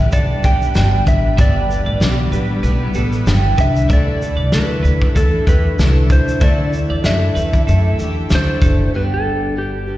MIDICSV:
0, 0, Header, 1, 8, 480
1, 0, Start_track
1, 0, Key_signature, 1, "major"
1, 0, Tempo, 628272
1, 1060, Time_signature, 4, 2, 24, 8
1, 7622, End_track
2, 0, Start_track
2, 0, Title_t, "Electric slide guitar"
2, 0, Program_c, 0, 29
2, 0, Note_on_c, 0, 76, 91
2, 97, Note_off_c, 0, 76, 0
2, 100, Note_on_c, 0, 74, 89
2, 345, Note_on_c, 0, 79, 110
2, 347, Note_off_c, 0, 74, 0
2, 791, Note_off_c, 0, 79, 0
2, 826, Note_on_c, 0, 76, 89
2, 1046, Note_off_c, 0, 76, 0
2, 1075, Note_on_c, 0, 74, 86
2, 1517, Note_off_c, 0, 74, 0
2, 2754, Note_on_c, 0, 76, 100
2, 2994, Note_off_c, 0, 76, 0
2, 3001, Note_on_c, 0, 74, 101
2, 3439, Note_off_c, 0, 74, 0
2, 3470, Note_on_c, 0, 71, 84
2, 3946, Note_off_c, 0, 71, 0
2, 3949, Note_on_c, 0, 69, 90
2, 4189, Note_off_c, 0, 69, 0
2, 4192, Note_on_c, 0, 71, 93
2, 4635, Note_off_c, 0, 71, 0
2, 4678, Note_on_c, 0, 72, 90
2, 4915, Note_off_c, 0, 72, 0
2, 4915, Note_on_c, 0, 74, 90
2, 5356, Note_off_c, 0, 74, 0
2, 5391, Note_on_c, 0, 76, 81
2, 6074, Note_off_c, 0, 76, 0
2, 6379, Note_on_c, 0, 72, 114
2, 6843, Note_off_c, 0, 72, 0
2, 6846, Note_on_c, 0, 71, 81
2, 6884, Note_off_c, 0, 71, 0
2, 6982, Note_on_c, 0, 69, 79
2, 7292, Note_off_c, 0, 69, 0
2, 7322, Note_on_c, 0, 67, 74
2, 7622, Note_off_c, 0, 67, 0
2, 7622, End_track
3, 0, Start_track
3, 0, Title_t, "Clean electric guitar"
3, 0, Program_c, 1, 27
3, 95, Note_on_c, 1, 69, 88
3, 332, Note_off_c, 1, 69, 0
3, 332, Note_on_c, 1, 67, 72
3, 461, Note_off_c, 1, 67, 0
3, 1050, Note_on_c, 1, 76, 102
3, 1180, Note_off_c, 1, 76, 0
3, 1423, Note_on_c, 1, 74, 78
3, 1655, Note_off_c, 1, 74, 0
3, 1774, Note_on_c, 1, 71, 84
3, 1902, Note_off_c, 1, 71, 0
3, 2010, Note_on_c, 1, 71, 79
3, 2242, Note_off_c, 1, 71, 0
3, 2257, Note_on_c, 1, 69, 84
3, 2383, Note_off_c, 1, 69, 0
3, 2733, Note_on_c, 1, 71, 82
3, 2861, Note_off_c, 1, 71, 0
3, 2972, Note_on_c, 1, 76, 109
3, 3101, Note_off_c, 1, 76, 0
3, 3337, Note_on_c, 1, 74, 79
3, 3572, Note_off_c, 1, 74, 0
3, 3688, Note_on_c, 1, 71, 85
3, 3818, Note_off_c, 1, 71, 0
3, 3937, Note_on_c, 1, 69, 81
3, 4166, Note_off_c, 1, 69, 0
3, 4176, Note_on_c, 1, 67, 77
3, 4303, Note_off_c, 1, 67, 0
3, 4899, Note_on_c, 1, 76, 102
3, 5024, Note_off_c, 1, 76, 0
3, 5272, Note_on_c, 1, 74, 83
3, 5499, Note_off_c, 1, 74, 0
3, 5617, Note_on_c, 1, 71, 78
3, 5743, Note_off_c, 1, 71, 0
3, 5861, Note_on_c, 1, 69, 82
3, 6105, Note_off_c, 1, 69, 0
3, 6105, Note_on_c, 1, 67, 87
3, 6227, Note_off_c, 1, 67, 0
3, 6584, Note_on_c, 1, 69, 86
3, 6707, Note_off_c, 1, 69, 0
3, 7622, End_track
4, 0, Start_track
4, 0, Title_t, "Ambient pad"
4, 0, Program_c, 2, 92
4, 0, Note_on_c, 2, 55, 83
4, 0, Note_on_c, 2, 62, 76
4, 0, Note_on_c, 2, 71, 94
4, 1040, Note_off_c, 2, 62, 0
4, 1065, Note_on_c, 2, 64, 74
4, 2948, Note_off_c, 2, 55, 0
4, 2949, Note_off_c, 2, 71, 0
4, 2962, Note_off_c, 2, 64, 0
4, 2982, Note_on_c, 2, 64, 88
4, 2983, Note_on_c, 2, 50, 83
4, 2983, Note_on_c, 2, 57, 76
4, 4881, Note_off_c, 2, 57, 0
4, 4895, Note_on_c, 2, 67, 71
4, 6791, Note_off_c, 2, 50, 0
4, 6791, Note_off_c, 2, 64, 0
4, 6799, Note_off_c, 2, 67, 0
4, 7622, End_track
5, 0, Start_track
5, 0, Title_t, "Twelve-string acoustic guitar"
5, 0, Program_c, 3, 25
5, 0, Note_on_c, 3, 55, 41
5, 0, Note_on_c, 3, 59, 47
5, 0, Note_on_c, 3, 62, 46
5, 0, Note_on_c, 3, 67, 53
5, 84, Note_off_c, 3, 55, 0
5, 91, Note_off_c, 3, 59, 0
5, 94, Note_off_c, 3, 67, 0
5, 94, Note_on_c, 3, 55, 60
5, 96, Note_off_c, 3, 62, 0
5, 100, Note_on_c, 3, 59, 55
5, 105, Note_on_c, 3, 62, 62
5, 109, Note_on_c, 3, 67, 69
5, 316, Note_off_c, 3, 67, 0
5, 325, Note_off_c, 3, 62, 0
5, 325, Note_on_c, 3, 67, 59
5, 330, Note_off_c, 3, 59, 0
5, 334, Note_off_c, 3, 55, 0
5, 335, Note_on_c, 3, 62, 47
5, 339, Note_on_c, 3, 59, 49
5, 343, Note_on_c, 3, 55, 41
5, 565, Note_off_c, 3, 55, 0
5, 566, Note_off_c, 3, 62, 0
5, 568, Note_off_c, 3, 59, 0
5, 571, Note_on_c, 3, 43, 74
5, 572, Note_off_c, 3, 67, 0
5, 574, Note_on_c, 3, 50, 75
5, 575, Note_on_c, 3, 55, 76
5, 575, Note_on_c, 3, 62, 82
5, 577, Note_on_c, 3, 59, 88
5, 581, Note_on_c, 3, 67, 85
5, 1043, Note_off_c, 3, 43, 0
5, 1046, Note_off_c, 3, 55, 0
5, 1047, Note_off_c, 3, 50, 0
5, 1050, Note_on_c, 3, 50, 92
5, 1051, Note_off_c, 3, 59, 0
5, 1052, Note_off_c, 3, 67, 0
5, 1052, Note_on_c, 3, 43, 83
5, 1055, Note_off_c, 3, 62, 0
5, 1055, Note_on_c, 3, 55, 81
5, 1058, Note_on_c, 3, 62, 83
5, 1060, Note_on_c, 3, 59, 88
5, 1062, Note_on_c, 3, 67, 84
5, 1278, Note_off_c, 3, 67, 0
5, 1287, Note_off_c, 3, 62, 0
5, 1287, Note_on_c, 3, 67, 55
5, 1289, Note_off_c, 3, 59, 0
5, 1295, Note_off_c, 3, 50, 0
5, 1296, Note_off_c, 3, 43, 0
5, 1296, Note_on_c, 3, 62, 57
5, 1297, Note_off_c, 3, 55, 0
5, 1298, Note_on_c, 3, 59, 45
5, 1305, Note_on_c, 3, 55, 46
5, 1531, Note_off_c, 3, 55, 0
5, 1532, Note_off_c, 3, 62, 0
5, 1533, Note_off_c, 3, 67, 0
5, 1534, Note_off_c, 3, 59, 0
5, 1534, Note_on_c, 3, 43, 71
5, 1537, Note_on_c, 3, 50, 83
5, 1540, Note_on_c, 3, 55, 75
5, 1541, Note_on_c, 3, 62, 81
5, 1544, Note_on_c, 3, 59, 83
5, 1546, Note_on_c, 3, 67, 89
5, 1771, Note_off_c, 3, 67, 0
5, 1775, Note_off_c, 3, 62, 0
5, 1777, Note_off_c, 3, 43, 0
5, 1778, Note_off_c, 3, 50, 0
5, 1780, Note_off_c, 3, 55, 0
5, 1780, Note_on_c, 3, 67, 68
5, 1781, Note_off_c, 3, 59, 0
5, 1784, Note_on_c, 3, 62, 53
5, 1791, Note_on_c, 3, 59, 56
5, 1798, Note_on_c, 3, 55, 52
5, 2001, Note_off_c, 3, 55, 0
5, 2010, Note_on_c, 3, 55, 68
5, 2014, Note_off_c, 3, 59, 0
5, 2014, Note_off_c, 3, 62, 0
5, 2020, Note_off_c, 3, 67, 0
5, 2023, Note_on_c, 3, 59, 77
5, 2023, Note_on_c, 3, 62, 72
5, 2035, Note_on_c, 3, 67, 79
5, 2245, Note_off_c, 3, 67, 0
5, 2251, Note_off_c, 3, 62, 0
5, 2254, Note_off_c, 3, 55, 0
5, 2254, Note_on_c, 3, 67, 66
5, 2259, Note_off_c, 3, 59, 0
5, 2260, Note_on_c, 3, 62, 66
5, 2268, Note_on_c, 3, 59, 65
5, 2275, Note_on_c, 3, 55, 55
5, 2489, Note_off_c, 3, 55, 0
5, 2494, Note_off_c, 3, 62, 0
5, 2496, Note_off_c, 3, 59, 0
5, 2496, Note_on_c, 3, 50, 95
5, 2497, Note_off_c, 3, 67, 0
5, 2498, Note_on_c, 3, 43, 91
5, 2498, Note_on_c, 3, 55, 90
5, 2503, Note_on_c, 3, 62, 98
5, 2505, Note_on_c, 3, 59, 86
5, 2508, Note_on_c, 3, 67, 93
5, 2978, Note_off_c, 3, 43, 0
5, 2978, Note_off_c, 3, 55, 0
5, 2979, Note_off_c, 3, 50, 0
5, 2982, Note_off_c, 3, 59, 0
5, 2982, Note_on_c, 3, 50, 77
5, 2983, Note_off_c, 3, 67, 0
5, 2987, Note_on_c, 3, 57, 84
5, 2991, Note_off_c, 3, 62, 0
5, 2991, Note_on_c, 3, 62, 88
5, 2995, Note_on_c, 3, 69, 89
5, 2997, Note_on_c, 3, 64, 92
5, 3215, Note_off_c, 3, 69, 0
5, 3220, Note_off_c, 3, 50, 0
5, 3221, Note_off_c, 3, 64, 0
5, 3223, Note_off_c, 3, 57, 0
5, 3224, Note_on_c, 3, 69, 57
5, 3225, Note_off_c, 3, 62, 0
5, 3230, Note_on_c, 3, 64, 52
5, 3241, Note_on_c, 3, 62, 44
5, 3461, Note_off_c, 3, 62, 0
5, 3461, Note_off_c, 3, 69, 0
5, 3463, Note_on_c, 3, 50, 69
5, 3464, Note_off_c, 3, 64, 0
5, 3464, Note_on_c, 3, 57, 79
5, 3470, Note_on_c, 3, 62, 76
5, 3476, Note_on_c, 3, 69, 79
5, 3478, Note_on_c, 3, 64, 81
5, 3684, Note_off_c, 3, 69, 0
5, 3693, Note_on_c, 3, 69, 51
5, 3698, Note_off_c, 3, 64, 0
5, 3701, Note_off_c, 3, 50, 0
5, 3701, Note_off_c, 3, 57, 0
5, 3704, Note_off_c, 3, 62, 0
5, 3707, Note_on_c, 3, 64, 55
5, 3714, Note_on_c, 3, 62, 41
5, 3930, Note_off_c, 3, 62, 0
5, 3934, Note_off_c, 3, 64, 0
5, 3936, Note_off_c, 3, 69, 0
5, 3936, Note_on_c, 3, 57, 61
5, 3939, Note_on_c, 3, 62, 68
5, 3944, Note_on_c, 3, 64, 66
5, 3948, Note_on_c, 3, 69, 69
5, 4173, Note_off_c, 3, 69, 0
5, 4177, Note_off_c, 3, 57, 0
5, 4179, Note_off_c, 3, 62, 0
5, 4181, Note_off_c, 3, 64, 0
5, 4182, Note_on_c, 3, 69, 58
5, 4191, Note_on_c, 3, 64, 57
5, 4199, Note_on_c, 3, 62, 45
5, 4420, Note_off_c, 3, 69, 0
5, 4421, Note_off_c, 3, 62, 0
5, 4421, Note_off_c, 3, 64, 0
5, 4421, Note_on_c, 3, 50, 80
5, 4426, Note_on_c, 3, 57, 84
5, 4431, Note_on_c, 3, 62, 81
5, 4431, Note_on_c, 3, 64, 83
5, 4438, Note_on_c, 3, 69, 88
5, 4896, Note_off_c, 3, 57, 0
5, 4901, Note_off_c, 3, 50, 0
5, 4902, Note_off_c, 3, 64, 0
5, 4904, Note_off_c, 3, 62, 0
5, 4904, Note_on_c, 3, 50, 81
5, 4905, Note_on_c, 3, 57, 89
5, 4907, Note_on_c, 3, 62, 91
5, 4908, Note_off_c, 3, 69, 0
5, 4911, Note_on_c, 3, 64, 91
5, 4917, Note_on_c, 3, 69, 97
5, 5124, Note_off_c, 3, 69, 0
5, 5133, Note_on_c, 3, 69, 58
5, 5139, Note_off_c, 3, 64, 0
5, 5141, Note_off_c, 3, 50, 0
5, 5142, Note_off_c, 3, 57, 0
5, 5143, Note_off_c, 3, 62, 0
5, 5148, Note_on_c, 3, 64, 47
5, 5153, Note_on_c, 3, 62, 44
5, 5375, Note_off_c, 3, 64, 0
5, 5376, Note_off_c, 3, 69, 0
5, 5377, Note_off_c, 3, 62, 0
5, 5377, Note_on_c, 3, 50, 71
5, 5377, Note_on_c, 3, 57, 76
5, 5384, Note_on_c, 3, 64, 88
5, 5386, Note_on_c, 3, 62, 88
5, 5388, Note_on_c, 3, 69, 80
5, 5618, Note_off_c, 3, 50, 0
5, 5618, Note_off_c, 3, 57, 0
5, 5619, Note_off_c, 3, 69, 0
5, 5621, Note_off_c, 3, 64, 0
5, 5622, Note_off_c, 3, 62, 0
5, 5628, Note_on_c, 3, 69, 53
5, 5636, Note_on_c, 3, 64, 51
5, 5644, Note_on_c, 3, 62, 43
5, 5861, Note_off_c, 3, 62, 0
5, 5863, Note_off_c, 3, 69, 0
5, 5866, Note_on_c, 3, 57, 60
5, 5867, Note_off_c, 3, 64, 0
5, 5870, Note_on_c, 3, 62, 60
5, 5878, Note_on_c, 3, 64, 63
5, 5880, Note_on_c, 3, 69, 66
5, 6097, Note_off_c, 3, 69, 0
5, 6102, Note_off_c, 3, 57, 0
5, 6105, Note_off_c, 3, 62, 0
5, 6106, Note_on_c, 3, 69, 66
5, 6108, Note_off_c, 3, 64, 0
5, 6117, Note_on_c, 3, 64, 53
5, 6127, Note_on_c, 3, 62, 54
5, 6343, Note_off_c, 3, 69, 0
5, 6348, Note_off_c, 3, 62, 0
5, 6348, Note_off_c, 3, 64, 0
5, 6353, Note_on_c, 3, 50, 88
5, 6354, Note_on_c, 3, 57, 96
5, 6357, Note_on_c, 3, 62, 89
5, 6359, Note_on_c, 3, 64, 93
5, 6362, Note_on_c, 3, 69, 100
5, 6827, Note_off_c, 3, 57, 0
5, 6828, Note_off_c, 3, 50, 0
5, 6830, Note_off_c, 3, 64, 0
5, 6830, Note_on_c, 3, 43, 67
5, 6831, Note_off_c, 3, 69, 0
5, 6831, Note_on_c, 3, 50, 68
5, 6832, Note_off_c, 3, 62, 0
5, 6834, Note_on_c, 3, 55, 68
5, 6835, Note_on_c, 3, 59, 71
5, 6838, Note_on_c, 3, 62, 83
5, 6841, Note_on_c, 3, 67, 82
5, 7298, Note_off_c, 3, 55, 0
5, 7301, Note_on_c, 3, 55, 50
5, 7304, Note_off_c, 3, 62, 0
5, 7306, Note_off_c, 3, 43, 0
5, 7307, Note_off_c, 3, 50, 0
5, 7308, Note_off_c, 3, 59, 0
5, 7311, Note_on_c, 3, 59, 52
5, 7313, Note_on_c, 3, 62, 51
5, 7315, Note_off_c, 3, 67, 0
5, 7318, Note_on_c, 3, 67, 52
5, 7531, Note_off_c, 3, 67, 0
5, 7540, Note_on_c, 3, 67, 47
5, 7541, Note_off_c, 3, 55, 0
5, 7542, Note_off_c, 3, 62, 0
5, 7543, Note_off_c, 3, 59, 0
5, 7551, Note_on_c, 3, 62, 43
5, 7553, Note_on_c, 3, 59, 39
5, 7557, Note_on_c, 3, 55, 35
5, 7622, Note_off_c, 3, 55, 0
5, 7622, Note_off_c, 3, 59, 0
5, 7622, Note_off_c, 3, 62, 0
5, 7622, Note_off_c, 3, 67, 0
5, 7622, End_track
6, 0, Start_track
6, 0, Title_t, "Cello"
6, 0, Program_c, 4, 42
6, 1665, Note_on_c, 4, 52, 80
6, 1779, Note_on_c, 4, 54, 83
6, 1790, Note_off_c, 4, 52, 0
6, 1912, Note_on_c, 4, 55, 83
6, 1924, Note_off_c, 4, 54, 0
6, 2025, Note_on_c, 4, 57, 75
6, 2036, Note_off_c, 4, 55, 0
6, 2148, Note_off_c, 4, 57, 0
6, 2156, Note_on_c, 4, 59, 81
6, 2843, Note_off_c, 4, 59, 0
6, 7622, End_track
7, 0, Start_track
7, 0, Title_t, "Upright bass"
7, 0, Program_c, 5, 32
7, 99, Note_on_c, 5, 35, 90
7, 296, Note_off_c, 5, 35, 0
7, 336, Note_on_c, 5, 35, 82
7, 534, Note_off_c, 5, 35, 0
7, 574, Note_on_c, 5, 31, 102
7, 773, Note_off_c, 5, 31, 0
7, 817, Note_on_c, 5, 33, 95
7, 1015, Note_off_c, 5, 33, 0
7, 1059, Note_on_c, 5, 31, 102
7, 1364, Note_off_c, 5, 31, 0
7, 1423, Note_on_c, 5, 33, 94
7, 1515, Note_off_c, 5, 33, 0
7, 1529, Note_on_c, 5, 35, 93
7, 1730, Note_off_c, 5, 35, 0
7, 1771, Note_on_c, 5, 33, 82
7, 1971, Note_off_c, 5, 33, 0
7, 2011, Note_on_c, 5, 35, 103
7, 2211, Note_off_c, 5, 35, 0
7, 2255, Note_on_c, 5, 33, 89
7, 2454, Note_off_c, 5, 33, 0
7, 2491, Note_on_c, 5, 31, 96
7, 2691, Note_off_c, 5, 31, 0
7, 2737, Note_on_c, 5, 36, 91
7, 2935, Note_off_c, 5, 36, 0
7, 2976, Note_on_c, 5, 38, 110
7, 3282, Note_off_c, 5, 38, 0
7, 3343, Note_on_c, 5, 36, 85
7, 3434, Note_off_c, 5, 36, 0
7, 3457, Note_on_c, 5, 38, 99
7, 3654, Note_off_c, 5, 38, 0
7, 3698, Note_on_c, 5, 38, 92
7, 3895, Note_off_c, 5, 38, 0
7, 3940, Note_on_c, 5, 40, 95
7, 4136, Note_off_c, 5, 40, 0
7, 4179, Note_on_c, 5, 40, 85
7, 4375, Note_off_c, 5, 40, 0
7, 4421, Note_on_c, 5, 36, 96
7, 4617, Note_off_c, 5, 36, 0
7, 4659, Note_on_c, 5, 38, 93
7, 4856, Note_off_c, 5, 38, 0
7, 4896, Note_on_c, 5, 38, 105
7, 5202, Note_off_c, 5, 38, 0
7, 5279, Note_on_c, 5, 40, 86
7, 5364, Note_off_c, 5, 40, 0
7, 5388, Note_on_c, 5, 42, 94
7, 5581, Note_off_c, 5, 42, 0
7, 5626, Note_on_c, 5, 40, 86
7, 5820, Note_off_c, 5, 40, 0
7, 5872, Note_on_c, 5, 42, 93
7, 6064, Note_off_c, 5, 42, 0
7, 6108, Note_on_c, 5, 40, 80
7, 6301, Note_off_c, 5, 40, 0
7, 6352, Note_on_c, 5, 38, 102
7, 6544, Note_off_c, 5, 38, 0
7, 6584, Note_on_c, 5, 30, 91
7, 6780, Note_off_c, 5, 30, 0
7, 6832, Note_on_c, 5, 31, 85
7, 7622, Note_off_c, 5, 31, 0
7, 7622, End_track
8, 0, Start_track
8, 0, Title_t, "Drums"
8, 92, Note_on_c, 9, 82, 72
8, 97, Note_on_c, 9, 36, 97
8, 169, Note_off_c, 9, 82, 0
8, 174, Note_off_c, 9, 36, 0
8, 334, Note_on_c, 9, 82, 63
8, 337, Note_on_c, 9, 36, 86
8, 410, Note_off_c, 9, 82, 0
8, 413, Note_off_c, 9, 36, 0
8, 473, Note_on_c, 9, 82, 48
8, 550, Note_off_c, 9, 82, 0
8, 571, Note_on_c, 9, 82, 75
8, 576, Note_on_c, 9, 38, 112
8, 648, Note_off_c, 9, 82, 0
8, 652, Note_off_c, 9, 38, 0
8, 814, Note_on_c, 9, 82, 53
8, 817, Note_on_c, 9, 36, 99
8, 891, Note_off_c, 9, 82, 0
8, 893, Note_off_c, 9, 36, 0
8, 1057, Note_on_c, 9, 82, 69
8, 1058, Note_on_c, 9, 36, 115
8, 1134, Note_off_c, 9, 36, 0
8, 1134, Note_off_c, 9, 82, 0
8, 1304, Note_on_c, 9, 82, 46
8, 1380, Note_off_c, 9, 82, 0
8, 1537, Note_on_c, 9, 38, 111
8, 1540, Note_on_c, 9, 82, 89
8, 1614, Note_off_c, 9, 38, 0
8, 1617, Note_off_c, 9, 82, 0
8, 1777, Note_on_c, 9, 82, 56
8, 1853, Note_off_c, 9, 82, 0
8, 2015, Note_on_c, 9, 82, 67
8, 2091, Note_off_c, 9, 82, 0
8, 2247, Note_on_c, 9, 82, 68
8, 2324, Note_off_c, 9, 82, 0
8, 2388, Note_on_c, 9, 82, 46
8, 2464, Note_off_c, 9, 82, 0
8, 2495, Note_on_c, 9, 82, 70
8, 2500, Note_on_c, 9, 38, 108
8, 2572, Note_off_c, 9, 82, 0
8, 2576, Note_off_c, 9, 38, 0
8, 2737, Note_on_c, 9, 36, 103
8, 2737, Note_on_c, 9, 82, 49
8, 2813, Note_off_c, 9, 36, 0
8, 2813, Note_off_c, 9, 82, 0
8, 2874, Note_on_c, 9, 82, 56
8, 2950, Note_off_c, 9, 82, 0
8, 2978, Note_on_c, 9, 36, 125
8, 2980, Note_on_c, 9, 82, 67
8, 3054, Note_off_c, 9, 36, 0
8, 3056, Note_off_c, 9, 82, 0
8, 3222, Note_on_c, 9, 82, 51
8, 3299, Note_off_c, 9, 82, 0
8, 3455, Note_on_c, 9, 38, 108
8, 3458, Note_on_c, 9, 82, 80
8, 3532, Note_off_c, 9, 38, 0
8, 3535, Note_off_c, 9, 82, 0
8, 3702, Note_on_c, 9, 82, 57
8, 3778, Note_off_c, 9, 82, 0
8, 3832, Note_on_c, 9, 36, 79
8, 3909, Note_off_c, 9, 36, 0
8, 3941, Note_on_c, 9, 36, 91
8, 3944, Note_on_c, 9, 82, 78
8, 4018, Note_off_c, 9, 36, 0
8, 4021, Note_off_c, 9, 82, 0
8, 4180, Note_on_c, 9, 36, 88
8, 4184, Note_on_c, 9, 82, 62
8, 4256, Note_off_c, 9, 36, 0
8, 4261, Note_off_c, 9, 82, 0
8, 4422, Note_on_c, 9, 82, 74
8, 4426, Note_on_c, 9, 38, 120
8, 4498, Note_off_c, 9, 82, 0
8, 4503, Note_off_c, 9, 38, 0
8, 4660, Note_on_c, 9, 36, 105
8, 4662, Note_on_c, 9, 82, 55
8, 4736, Note_off_c, 9, 36, 0
8, 4738, Note_off_c, 9, 82, 0
8, 4798, Note_on_c, 9, 82, 55
8, 4875, Note_off_c, 9, 82, 0
8, 4896, Note_on_c, 9, 82, 70
8, 4899, Note_on_c, 9, 36, 122
8, 4972, Note_off_c, 9, 82, 0
8, 4975, Note_off_c, 9, 36, 0
8, 5143, Note_on_c, 9, 82, 47
8, 5219, Note_off_c, 9, 82, 0
8, 5379, Note_on_c, 9, 38, 101
8, 5382, Note_on_c, 9, 82, 82
8, 5455, Note_off_c, 9, 38, 0
8, 5458, Note_off_c, 9, 82, 0
8, 5624, Note_on_c, 9, 82, 56
8, 5701, Note_off_c, 9, 82, 0
8, 5754, Note_on_c, 9, 82, 41
8, 5756, Note_on_c, 9, 36, 74
8, 5830, Note_off_c, 9, 82, 0
8, 5832, Note_off_c, 9, 36, 0
8, 5870, Note_on_c, 9, 82, 77
8, 5946, Note_off_c, 9, 82, 0
8, 6106, Note_on_c, 9, 82, 66
8, 6182, Note_off_c, 9, 82, 0
8, 6340, Note_on_c, 9, 82, 73
8, 6344, Note_on_c, 9, 38, 105
8, 6416, Note_off_c, 9, 82, 0
8, 6421, Note_off_c, 9, 38, 0
8, 6583, Note_on_c, 9, 36, 97
8, 6584, Note_on_c, 9, 82, 51
8, 6659, Note_off_c, 9, 36, 0
8, 6661, Note_off_c, 9, 82, 0
8, 7622, End_track
0, 0, End_of_file